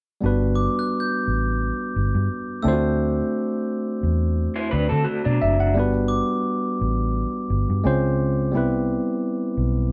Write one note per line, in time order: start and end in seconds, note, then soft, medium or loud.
0.21 0.66 G1 medium
0.21 2.60 G3 medium
0.21 2.60 B3 medium
0.21 2.61 D4 medium
0.21 2.61 F#4 medium
0.26 2.62 B4 medium
0.55 1.37 D6 medium
0.79 1.56 F#6 soft
1.00 1.77 G6 soft
1.28 1.70 A1 medium
1.96 2.11 G1 medium
2.15 2.27 G2 loud
2.62 3.21 D2 medium
2.62 5.36 A3 medium
2.62 5.37 C4 medium
2.62 5.37 D4 medium
2.62 3.45 E6 medium
2.67 2.73 F4 soft
2.67 5.39 C5 medium
2.73 5.41 F#4 medium
4.03 4.46 E2 medium
4.56 4.71 E4 medium
4.56 4.71 C5 medium
4.71 4.88 D2 medium
4.71 4.89 D4 medium
4.71 4.89 B4 medium
4.89 5.04 D3 medium
4.89 5.05 C4 medium
4.89 5.05 A4 medium
5.04 5.23 A3 medium
5.04 5.23 F#4 medium
5.24 5.39 B2 medium
5.24 5.73 F#3 soft
5.24 5.73 D4 soft
5.24 5.40 D5 medium
5.42 5.77 F#1 medium
5.42 5.59 E5 medium
5.60 5.93 F#5 medium
5.74 6.20 G1 medium
5.74 7.79 G3 medium
5.74 7.79 B3 medium
5.74 7.80 D4 medium
5.78 7.81 F#4 medium
5.78 7.81 B4 medium
6.08 6.91 D6 medium
6.81 7.24 A1 medium
7.50 7.65 G1 medium
7.70 7.82 G2 medium
7.84 8.54 C#2 medium
7.84 8.53 G#3 medium
7.84 8.53 C4 medium
7.84 8.54 C#4 medium
7.84 8.54 F4 medium
7.84 8.54 C5 medium
8.52 8.97 C2 loud
8.52 9.92 G3 medium
8.52 9.92 B3 medium
8.52 9.92 C4 medium
8.52 9.92 E4 medium
8.57 9.92 B4 medium
9.57 9.92 B1 medium